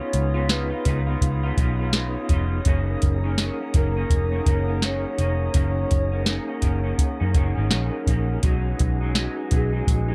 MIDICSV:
0, 0, Header, 1, 7, 480
1, 0, Start_track
1, 0, Key_signature, 6, "major"
1, 0, Tempo, 722022
1, 1768, Time_signature, 4, 2, 24, 8
1, 6746, End_track
2, 0, Start_track
2, 0, Title_t, "Ambient pad"
2, 0, Program_c, 0, 92
2, 0, Note_on_c, 0, 73, 83
2, 0, Note_on_c, 0, 77, 75
2, 0, Note_on_c, 0, 83, 74
2, 0, Note_on_c, 0, 87, 75
2, 1746, Note_off_c, 0, 83, 0
2, 1747, Note_off_c, 0, 77, 0
2, 1775, Note_on_c, 0, 78, 71
2, 1777, Note_on_c, 0, 82, 69
2, 5581, Note_off_c, 0, 73, 0
2, 5585, Note_off_c, 0, 82, 0
2, 5614, Note_on_c, 0, 80, 62
2, 5616, Note_on_c, 0, 71, 76
2, 6746, Note_off_c, 0, 71, 0
2, 6746, Note_off_c, 0, 78, 0
2, 6746, Note_off_c, 0, 80, 0
2, 6746, Note_off_c, 0, 87, 0
2, 6746, End_track
3, 0, Start_track
3, 0, Title_t, "Soft synth lead"
3, 0, Program_c, 1, 80
3, 0, Note_on_c, 1, 73, 115
3, 331, Note_on_c, 1, 71, 94
3, 341, Note_off_c, 1, 73, 0
3, 1049, Note_off_c, 1, 71, 0
3, 2501, Note_on_c, 1, 70, 102
3, 3219, Note_on_c, 1, 73, 108
3, 3229, Note_off_c, 1, 70, 0
3, 3693, Note_off_c, 1, 73, 0
3, 3701, Note_on_c, 1, 73, 121
3, 4138, Note_on_c, 1, 71, 59
3, 4148, Note_off_c, 1, 73, 0
3, 4181, Note_on_c, 1, 70, 85
3, 4191, Note_off_c, 1, 71, 0
3, 4894, Note_off_c, 1, 70, 0
3, 6356, Note_on_c, 1, 68, 101
3, 6746, Note_off_c, 1, 68, 0
3, 6746, End_track
4, 0, Start_track
4, 0, Title_t, "Tonewheel organ"
4, 0, Program_c, 2, 16
4, 0, Note_on_c, 2, 59, 66
4, 0, Note_on_c, 2, 63, 57
4, 0, Note_on_c, 2, 65, 55
4, 0, Note_on_c, 2, 68, 71
4, 1732, Note_off_c, 2, 59, 0
4, 1739, Note_off_c, 2, 63, 0
4, 1744, Note_off_c, 2, 65, 0
4, 1748, Note_off_c, 2, 68, 0
4, 1755, Note_on_c, 2, 61, 81
4, 1765, Note_on_c, 2, 63, 73
4, 1775, Note_on_c, 2, 68, 68
4, 1788, Note_on_c, 2, 70, 87
4, 5574, Note_off_c, 2, 61, 0
4, 5579, Note_off_c, 2, 63, 0
4, 5584, Note_off_c, 2, 68, 0
4, 5590, Note_on_c, 2, 61, 74
4, 5591, Note_off_c, 2, 70, 0
4, 5599, Note_on_c, 2, 63, 65
4, 5610, Note_on_c, 2, 66, 64
4, 5624, Note_on_c, 2, 68, 84
4, 6746, Note_off_c, 2, 61, 0
4, 6746, Note_off_c, 2, 63, 0
4, 6746, Note_off_c, 2, 66, 0
4, 6746, Note_off_c, 2, 68, 0
4, 6746, End_track
5, 0, Start_track
5, 0, Title_t, "Clean electric guitar"
5, 0, Program_c, 3, 27
5, 0, Note_on_c, 3, 63, 38
5, 0, Note_on_c, 3, 65, 45
5, 9, Note_on_c, 3, 59, 42
5, 218, Note_off_c, 3, 65, 0
5, 226, Note_on_c, 3, 65, 58
5, 229, Note_off_c, 3, 63, 0
5, 237, Note_on_c, 3, 63, 54
5, 241, Note_off_c, 3, 59, 0
5, 248, Note_on_c, 3, 59, 47
5, 325, Note_off_c, 3, 65, 0
5, 327, Note_off_c, 3, 59, 0
5, 328, Note_on_c, 3, 49, 74
5, 331, Note_off_c, 3, 63, 0
5, 335, Note_on_c, 3, 59, 78
5, 338, Note_on_c, 3, 63, 82
5, 342, Note_on_c, 3, 65, 82
5, 456, Note_off_c, 3, 65, 0
5, 464, Note_on_c, 3, 65, 53
5, 471, Note_off_c, 3, 63, 0
5, 472, Note_off_c, 3, 49, 0
5, 476, Note_off_c, 3, 59, 0
5, 479, Note_on_c, 3, 63, 48
5, 487, Note_on_c, 3, 59, 47
5, 564, Note_off_c, 3, 65, 0
5, 564, Note_on_c, 3, 49, 60
5, 566, Note_off_c, 3, 59, 0
5, 572, Note_off_c, 3, 63, 0
5, 574, Note_on_c, 3, 59, 54
5, 581, Note_on_c, 3, 63, 63
5, 585, Note_on_c, 3, 65, 66
5, 699, Note_off_c, 3, 65, 0
5, 707, Note_on_c, 3, 65, 56
5, 710, Note_off_c, 3, 49, 0
5, 711, Note_off_c, 3, 63, 0
5, 715, Note_off_c, 3, 59, 0
5, 719, Note_on_c, 3, 63, 47
5, 729, Note_on_c, 3, 59, 45
5, 945, Note_off_c, 3, 65, 0
5, 953, Note_on_c, 3, 65, 51
5, 955, Note_off_c, 3, 63, 0
5, 960, Note_off_c, 3, 59, 0
5, 965, Note_on_c, 3, 63, 50
5, 976, Note_on_c, 3, 59, 49
5, 1043, Note_on_c, 3, 49, 62
5, 1044, Note_off_c, 3, 59, 0
5, 1049, Note_off_c, 3, 65, 0
5, 1050, Note_off_c, 3, 63, 0
5, 1052, Note_on_c, 3, 59, 66
5, 1058, Note_on_c, 3, 63, 74
5, 1064, Note_on_c, 3, 65, 63
5, 1184, Note_off_c, 3, 65, 0
5, 1189, Note_off_c, 3, 49, 0
5, 1192, Note_on_c, 3, 65, 62
5, 1194, Note_off_c, 3, 59, 0
5, 1197, Note_off_c, 3, 63, 0
5, 1205, Note_on_c, 3, 63, 48
5, 1215, Note_on_c, 3, 59, 45
5, 1288, Note_off_c, 3, 65, 0
5, 1290, Note_off_c, 3, 59, 0
5, 1290, Note_on_c, 3, 49, 86
5, 1294, Note_off_c, 3, 63, 0
5, 1298, Note_on_c, 3, 59, 92
5, 1302, Note_on_c, 3, 63, 100
5, 1304, Note_on_c, 3, 65, 91
5, 1520, Note_off_c, 3, 49, 0
5, 1528, Note_on_c, 3, 49, 59
5, 1529, Note_off_c, 3, 59, 0
5, 1535, Note_off_c, 3, 63, 0
5, 1535, Note_off_c, 3, 65, 0
5, 1537, Note_on_c, 3, 59, 64
5, 1543, Note_on_c, 3, 63, 74
5, 1550, Note_on_c, 3, 65, 67
5, 1767, Note_off_c, 3, 49, 0
5, 1770, Note_on_c, 3, 42, 87
5, 1772, Note_off_c, 3, 59, 0
5, 1775, Note_off_c, 3, 63, 0
5, 1775, Note_on_c, 3, 51, 85
5, 1779, Note_off_c, 3, 65, 0
5, 1779, Note_on_c, 3, 58, 106
5, 1785, Note_on_c, 3, 61, 102
5, 2142, Note_off_c, 3, 61, 0
5, 2150, Note_on_c, 3, 61, 58
5, 2152, Note_off_c, 3, 42, 0
5, 2153, Note_off_c, 3, 58, 0
5, 2155, Note_off_c, 3, 51, 0
5, 2161, Note_on_c, 3, 58, 57
5, 2171, Note_on_c, 3, 51, 52
5, 2244, Note_off_c, 3, 51, 0
5, 2246, Note_on_c, 3, 42, 89
5, 2247, Note_off_c, 3, 61, 0
5, 2249, Note_off_c, 3, 58, 0
5, 2252, Note_on_c, 3, 51, 82
5, 2257, Note_on_c, 3, 58, 95
5, 2263, Note_on_c, 3, 61, 86
5, 2381, Note_off_c, 3, 61, 0
5, 2389, Note_on_c, 3, 61, 54
5, 2391, Note_off_c, 3, 42, 0
5, 2394, Note_off_c, 3, 51, 0
5, 2396, Note_off_c, 3, 58, 0
5, 2403, Note_on_c, 3, 58, 43
5, 2410, Note_on_c, 3, 51, 41
5, 2486, Note_off_c, 3, 51, 0
5, 2486, Note_off_c, 3, 61, 0
5, 2488, Note_on_c, 3, 42, 49
5, 2493, Note_off_c, 3, 58, 0
5, 2494, Note_on_c, 3, 51, 57
5, 2502, Note_on_c, 3, 58, 54
5, 2508, Note_on_c, 3, 61, 55
5, 2629, Note_off_c, 3, 61, 0
5, 2632, Note_off_c, 3, 42, 0
5, 2635, Note_off_c, 3, 51, 0
5, 2637, Note_on_c, 3, 61, 51
5, 2639, Note_off_c, 3, 58, 0
5, 2647, Note_on_c, 3, 58, 52
5, 2659, Note_on_c, 3, 51, 41
5, 2861, Note_off_c, 3, 61, 0
5, 2869, Note_on_c, 3, 61, 51
5, 2873, Note_off_c, 3, 58, 0
5, 2881, Note_on_c, 3, 58, 44
5, 2883, Note_off_c, 3, 51, 0
5, 2891, Note_on_c, 3, 51, 42
5, 2966, Note_off_c, 3, 61, 0
5, 2969, Note_off_c, 3, 51, 0
5, 2970, Note_on_c, 3, 42, 61
5, 2972, Note_off_c, 3, 58, 0
5, 2977, Note_on_c, 3, 51, 59
5, 2982, Note_on_c, 3, 58, 64
5, 2989, Note_on_c, 3, 61, 65
5, 3100, Note_off_c, 3, 61, 0
5, 3108, Note_on_c, 3, 61, 53
5, 3112, Note_off_c, 3, 42, 0
5, 3112, Note_off_c, 3, 58, 0
5, 3116, Note_off_c, 3, 51, 0
5, 3120, Note_on_c, 3, 58, 51
5, 3130, Note_on_c, 3, 51, 40
5, 3202, Note_off_c, 3, 51, 0
5, 3203, Note_on_c, 3, 42, 76
5, 3206, Note_off_c, 3, 58, 0
5, 3206, Note_off_c, 3, 61, 0
5, 3210, Note_on_c, 3, 51, 87
5, 3214, Note_on_c, 3, 58, 92
5, 3219, Note_on_c, 3, 61, 92
5, 3441, Note_off_c, 3, 51, 0
5, 3445, Note_off_c, 3, 42, 0
5, 3447, Note_off_c, 3, 58, 0
5, 3449, Note_on_c, 3, 51, 60
5, 3453, Note_off_c, 3, 61, 0
5, 3455, Note_on_c, 3, 58, 68
5, 3463, Note_on_c, 3, 61, 66
5, 3683, Note_off_c, 3, 51, 0
5, 3684, Note_on_c, 3, 42, 76
5, 3686, Note_off_c, 3, 58, 0
5, 3691, Note_on_c, 3, 51, 77
5, 3692, Note_off_c, 3, 61, 0
5, 3694, Note_on_c, 3, 58, 86
5, 3700, Note_on_c, 3, 61, 93
5, 4058, Note_off_c, 3, 61, 0
5, 4066, Note_on_c, 3, 61, 57
5, 4069, Note_off_c, 3, 42, 0
5, 4070, Note_off_c, 3, 58, 0
5, 4073, Note_off_c, 3, 51, 0
5, 4077, Note_on_c, 3, 58, 50
5, 4088, Note_on_c, 3, 51, 47
5, 4160, Note_off_c, 3, 51, 0
5, 4163, Note_on_c, 3, 42, 77
5, 4164, Note_off_c, 3, 61, 0
5, 4166, Note_off_c, 3, 58, 0
5, 4168, Note_on_c, 3, 51, 75
5, 4173, Note_on_c, 3, 58, 74
5, 4177, Note_on_c, 3, 61, 82
5, 4298, Note_off_c, 3, 61, 0
5, 4306, Note_on_c, 3, 61, 51
5, 4309, Note_off_c, 3, 42, 0
5, 4310, Note_off_c, 3, 58, 0
5, 4312, Note_off_c, 3, 51, 0
5, 4318, Note_on_c, 3, 58, 49
5, 4327, Note_on_c, 3, 51, 40
5, 4396, Note_on_c, 3, 42, 54
5, 4399, Note_off_c, 3, 51, 0
5, 4404, Note_off_c, 3, 61, 0
5, 4407, Note_off_c, 3, 58, 0
5, 4407, Note_on_c, 3, 51, 55
5, 4415, Note_on_c, 3, 58, 53
5, 4421, Note_on_c, 3, 61, 65
5, 4537, Note_off_c, 3, 61, 0
5, 4545, Note_on_c, 3, 61, 55
5, 4546, Note_off_c, 3, 42, 0
5, 4548, Note_off_c, 3, 58, 0
5, 4551, Note_off_c, 3, 51, 0
5, 4556, Note_on_c, 3, 58, 49
5, 4567, Note_on_c, 3, 51, 41
5, 4780, Note_off_c, 3, 61, 0
5, 4788, Note_on_c, 3, 61, 55
5, 4791, Note_off_c, 3, 58, 0
5, 4799, Note_off_c, 3, 51, 0
5, 4799, Note_on_c, 3, 58, 52
5, 4808, Note_on_c, 3, 51, 49
5, 4880, Note_off_c, 3, 51, 0
5, 4881, Note_on_c, 3, 42, 62
5, 4885, Note_off_c, 3, 61, 0
5, 4888, Note_on_c, 3, 51, 65
5, 4889, Note_off_c, 3, 58, 0
5, 4897, Note_on_c, 3, 58, 66
5, 4904, Note_on_c, 3, 61, 77
5, 5015, Note_off_c, 3, 61, 0
5, 5022, Note_on_c, 3, 61, 53
5, 5027, Note_off_c, 3, 58, 0
5, 5028, Note_off_c, 3, 42, 0
5, 5032, Note_off_c, 3, 51, 0
5, 5035, Note_on_c, 3, 58, 54
5, 5046, Note_on_c, 3, 51, 51
5, 5119, Note_off_c, 3, 51, 0
5, 5121, Note_on_c, 3, 42, 89
5, 5123, Note_off_c, 3, 58, 0
5, 5123, Note_off_c, 3, 61, 0
5, 5127, Note_on_c, 3, 51, 98
5, 5131, Note_on_c, 3, 58, 93
5, 5136, Note_on_c, 3, 61, 96
5, 5355, Note_off_c, 3, 42, 0
5, 5363, Note_off_c, 3, 51, 0
5, 5363, Note_on_c, 3, 42, 63
5, 5369, Note_off_c, 3, 58, 0
5, 5371, Note_off_c, 3, 61, 0
5, 5371, Note_on_c, 3, 51, 67
5, 5379, Note_on_c, 3, 58, 67
5, 5386, Note_on_c, 3, 61, 68
5, 5604, Note_on_c, 3, 47, 80
5, 5605, Note_off_c, 3, 42, 0
5, 5607, Note_off_c, 3, 51, 0
5, 5609, Note_on_c, 3, 54, 93
5, 5611, Note_off_c, 3, 58, 0
5, 5614, Note_on_c, 3, 56, 90
5, 5616, Note_off_c, 3, 61, 0
5, 5620, Note_on_c, 3, 63, 107
5, 5981, Note_off_c, 3, 63, 0
5, 5989, Note_off_c, 3, 47, 0
5, 5989, Note_on_c, 3, 63, 58
5, 5992, Note_off_c, 3, 54, 0
5, 5992, Note_off_c, 3, 56, 0
5, 6000, Note_on_c, 3, 56, 65
5, 6010, Note_on_c, 3, 54, 54
5, 6079, Note_off_c, 3, 54, 0
5, 6082, Note_on_c, 3, 47, 86
5, 6085, Note_off_c, 3, 56, 0
5, 6086, Note_off_c, 3, 63, 0
5, 6087, Note_on_c, 3, 54, 81
5, 6093, Note_on_c, 3, 56, 90
5, 6097, Note_on_c, 3, 63, 92
5, 6216, Note_off_c, 3, 63, 0
5, 6224, Note_on_c, 3, 63, 54
5, 6229, Note_off_c, 3, 47, 0
5, 6229, Note_off_c, 3, 56, 0
5, 6231, Note_off_c, 3, 54, 0
5, 6237, Note_on_c, 3, 56, 44
5, 6247, Note_on_c, 3, 54, 39
5, 6323, Note_on_c, 3, 47, 58
5, 6324, Note_off_c, 3, 54, 0
5, 6324, Note_off_c, 3, 63, 0
5, 6330, Note_off_c, 3, 56, 0
5, 6332, Note_on_c, 3, 54, 58
5, 6339, Note_on_c, 3, 56, 54
5, 6345, Note_on_c, 3, 63, 59
5, 6459, Note_off_c, 3, 63, 0
5, 6467, Note_on_c, 3, 63, 50
5, 6469, Note_off_c, 3, 47, 0
5, 6471, Note_off_c, 3, 56, 0
5, 6474, Note_off_c, 3, 54, 0
5, 6479, Note_on_c, 3, 56, 48
5, 6487, Note_on_c, 3, 54, 47
5, 6696, Note_off_c, 3, 63, 0
5, 6704, Note_on_c, 3, 63, 52
5, 6709, Note_off_c, 3, 56, 0
5, 6717, Note_on_c, 3, 56, 42
5, 6719, Note_off_c, 3, 54, 0
5, 6726, Note_on_c, 3, 54, 42
5, 6746, Note_off_c, 3, 54, 0
5, 6746, Note_off_c, 3, 56, 0
5, 6746, Note_off_c, 3, 63, 0
5, 6746, End_track
6, 0, Start_track
6, 0, Title_t, "Picked electric bass"
6, 0, Program_c, 4, 34
6, 93, Note_on_c, 4, 37, 86
6, 475, Note_off_c, 4, 37, 0
6, 572, Note_on_c, 4, 37, 96
6, 763, Note_off_c, 4, 37, 0
6, 809, Note_on_c, 4, 37, 79
6, 1001, Note_off_c, 4, 37, 0
6, 1048, Note_on_c, 4, 35, 80
6, 1431, Note_off_c, 4, 35, 0
6, 1528, Note_on_c, 4, 29, 94
6, 1719, Note_off_c, 4, 29, 0
6, 1768, Note_on_c, 4, 30, 108
6, 1960, Note_off_c, 4, 30, 0
6, 2014, Note_on_c, 4, 30, 97
6, 2319, Note_off_c, 4, 30, 0
6, 2490, Note_on_c, 4, 30, 98
6, 2681, Note_off_c, 4, 30, 0
6, 2728, Note_on_c, 4, 29, 96
6, 2919, Note_off_c, 4, 29, 0
6, 2968, Note_on_c, 4, 30, 75
6, 3352, Note_off_c, 4, 30, 0
6, 3449, Note_on_c, 4, 29, 90
6, 3640, Note_off_c, 4, 29, 0
6, 3689, Note_on_c, 4, 30, 104
6, 3880, Note_off_c, 4, 30, 0
6, 3933, Note_on_c, 4, 30, 102
6, 4238, Note_off_c, 4, 30, 0
6, 4404, Note_on_c, 4, 30, 111
6, 4597, Note_off_c, 4, 30, 0
6, 4796, Note_on_c, 4, 42, 105
6, 4871, Note_off_c, 4, 42, 0
6, 4885, Note_on_c, 4, 30, 79
6, 5001, Note_off_c, 4, 30, 0
6, 5037, Note_on_c, 4, 32, 87
6, 5111, Note_off_c, 4, 32, 0
6, 5131, Note_on_c, 4, 34, 87
6, 5245, Note_off_c, 4, 34, 0
6, 5367, Note_on_c, 4, 34, 83
6, 5559, Note_off_c, 4, 34, 0
6, 5608, Note_on_c, 4, 35, 102
6, 5800, Note_off_c, 4, 35, 0
6, 5852, Note_on_c, 4, 35, 89
6, 6157, Note_off_c, 4, 35, 0
6, 6328, Note_on_c, 4, 35, 97
6, 6520, Note_off_c, 4, 35, 0
6, 6565, Note_on_c, 4, 34, 89
6, 6746, Note_off_c, 4, 34, 0
6, 6746, End_track
7, 0, Start_track
7, 0, Title_t, "Drums"
7, 89, Note_on_c, 9, 42, 72
7, 155, Note_off_c, 9, 42, 0
7, 328, Note_on_c, 9, 38, 109
7, 330, Note_on_c, 9, 42, 90
7, 395, Note_off_c, 9, 38, 0
7, 396, Note_off_c, 9, 42, 0
7, 567, Note_on_c, 9, 42, 83
7, 570, Note_on_c, 9, 36, 93
7, 633, Note_off_c, 9, 42, 0
7, 636, Note_off_c, 9, 36, 0
7, 807, Note_on_c, 9, 36, 91
7, 812, Note_on_c, 9, 42, 87
7, 874, Note_off_c, 9, 36, 0
7, 878, Note_off_c, 9, 42, 0
7, 1047, Note_on_c, 9, 36, 92
7, 1048, Note_on_c, 9, 42, 75
7, 1113, Note_off_c, 9, 36, 0
7, 1115, Note_off_c, 9, 42, 0
7, 1282, Note_on_c, 9, 38, 107
7, 1285, Note_on_c, 9, 42, 92
7, 1349, Note_off_c, 9, 38, 0
7, 1351, Note_off_c, 9, 42, 0
7, 1523, Note_on_c, 9, 42, 69
7, 1525, Note_on_c, 9, 36, 75
7, 1590, Note_off_c, 9, 42, 0
7, 1591, Note_off_c, 9, 36, 0
7, 1762, Note_on_c, 9, 42, 81
7, 1768, Note_on_c, 9, 36, 114
7, 1828, Note_off_c, 9, 42, 0
7, 1835, Note_off_c, 9, 36, 0
7, 2006, Note_on_c, 9, 42, 69
7, 2014, Note_on_c, 9, 36, 81
7, 2073, Note_off_c, 9, 42, 0
7, 2080, Note_off_c, 9, 36, 0
7, 2246, Note_on_c, 9, 38, 104
7, 2248, Note_on_c, 9, 42, 86
7, 2313, Note_off_c, 9, 38, 0
7, 2314, Note_off_c, 9, 42, 0
7, 2486, Note_on_c, 9, 42, 80
7, 2489, Note_on_c, 9, 36, 100
7, 2552, Note_off_c, 9, 42, 0
7, 2555, Note_off_c, 9, 36, 0
7, 2726, Note_on_c, 9, 36, 85
7, 2730, Note_on_c, 9, 42, 88
7, 2792, Note_off_c, 9, 36, 0
7, 2796, Note_off_c, 9, 42, 0
7, 2967, Note_on_c, 9, 36, 87
7, 2968, Note_on_c, 9, 42, 81
7, 3033, Note_off_c, 9, 36, 0
7, 3035, Note_off_c, 9, 42, 0
7, 3207, Note_on_c, 9, 38, 102
7, 3209, Note_on_c, 9, 42, 96
7, 3273, Note_off_c, 9, 38, 0
7, 3276, Note_off_c, 9, 42, 0
7, 3447, Note_on_c, 9, 42, 68
7, 3513, Note_off_c, 9, 42, 0
7, 3683, Note_on_c, 9, 42, 93
7, 3687, Note_on_c, 9, 36, 106
7, 3749, Note_off_c, 9, 42, 0
7, 3754, Note_off_c, 9, 36, 0
7, 3927, Note_on_c, 9, 42, 71
7, 3932, Note_on_c, 9, 36, 92
7, 3994, Note_off_c, 9, 42, 0
7, 3999, Note_off_c, 9, 36, 0
7, 4163, Note_on_c, 9, 38, 114
7, 4164, Note_on_c, 9, 42, 93
7, 4229, Note_off_c, 9, 38, 0
7, 4231, Note_off_c, 9, 42, 0
7, 4401, Note_on_c, 9, 42, 82
7, 4406, Note_on_c, 9, 36, 84
7, 4468, Note_off_c, 9, 42, 0
7, 4472, Note_off_c, 9, 36, 0
7, 4643, Note_on_c, 9, 36, 85
7, 4646, Note_on_c, 9, 42, 90
7, 4710, Note_off_c, 9, 36, 0
7, 4713, Note_off_c, 9, 42, 0
7, 4883, Note_on_c, 9, 36, 97
7, 4883, Note_on_c, 9, 42, 66
7, 4949, Note_off_c, 9, 36, 0
7, 4949, Note_off_c, 9, 42, 0
7, 5123, Note_on_c, 9, 38, 113
7, 5126, Note_on_c, 9, 42, 100
7, 5190, Note_off_c, 9, 38, 0
7, 5192, Note_off_c, 9, 42, 0
7, 5364, Note_on_c, 9, 36, 78
7, 5368, Note_on_c, 9, 42, 66
7, 5430, Note_off_c, 9, 36, 0
7, 5435, Note_off_c, 9, 42, 0
7, 5603, Note_on_c, 9, 42, 89
7, 5607, Note_on_c, 9, 36, 113
7, 5670, Note_off_c, 9, 42, 0
7, 5674, Note_off_c, 9, 36, 0
7, 5846, Note_on_c, 9, 42, 69
7, 5852, Note_on_c, 9, 36, 85
7, 5913, Note_off_c, 9, 42, 0
7, 5918, Note_off_c, 9, 36, 0
7, 6084, Note_on_c, 9, 38, 126
7, 6085, Note_on_c, 9, 42, 87
7, 6150, Note_off_c, 9, 38, 0
7, 6152, Note_off_c, 9, 42, 0
7, 6322, Note_on_c, 9, 42, 71
7, 6326, Note_on_c, 9, 36, 90
7, 6389, Note_off_c, 9, 42, 0
7, 6393, Note_off_c, 9, 36, 0
7, 6564, Note_on_c, 9, 36, 91
7, 6568, Note_on_c, 9, 42, 88
7, 6631, Note_off_c, 9, 36, 0
7, 6635, Note_off_c, 9, 42, 0
7, 6746, End_track
0, 0, End_of_file